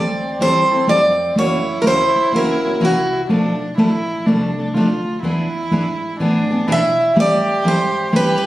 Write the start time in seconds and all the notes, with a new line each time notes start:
Already playing: D2 C4 D5
0.39 E2 E3 G3 C4 E4 A4 C5
0.71 C4 E4 A4
0.87 F2 E3 G3 C4 E4 A4 D5
1.35 F#2 C#3 E3 A#3 C#4 E4 F#4 C#5
1.82 D#2 C#3 E3 A#3 C#4 A#4
1.86 F#4 C5
2.15 muted upright bass stroke
2.32 C#2 C#3 E3 A#3 C#4 F#4
2.36 A#4
2.64 A#3 C#4 F#4
2.80 C2 C#3 E3 A#3 C#4 F#4
2.85 F#4
3.29 B1 B2 F3 A3 D4 A4
3.77 A1 B2 F3 A3 D4 E4 A4
4.26 C2 B2 F3 A3 D4 A4
4.59 A3 D4 A4
4.74 D2 B2 F3 A3 D4 F4 A4
5.22 E2 E3 B3 D4 E4 G#4
5.71 G#2 E3 B3 D4 G#4
6.19 A2 E3 B3 D4 G#4
6.50 B3 D4 G#4
6.67 B2 E3 B3 D4 E4 G#4
6.72 E5
7.16 A2 E3 G3 C4 E4 G4 A4
7.20 D5
7.64 G#2 E3 G3 C4 E4 A4
7.68 C5
8.12 G2 E3 G3 C4 E4 G4 A4 B4
8.38 B4